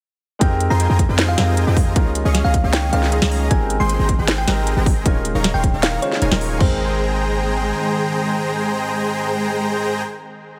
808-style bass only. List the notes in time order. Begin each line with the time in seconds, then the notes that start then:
0.41 F2
0.70 F2
0.90 F2
1.09 F2
1.38 F2
1.67 F2
1.96 C#2
2.25 C#2
2.45 C#2
2.64 C#2
2.93 C#2
3.22 C#2
3.51 G#1
3.80 G#1
3.99 G#1
4.19 G#1
4.47 G#1
4.77 G#1
5.06 D#1
5.35 D#1
5.54 D#1
5.73 D#1
6.22 D#1
6.32 D#1
6.60 G#1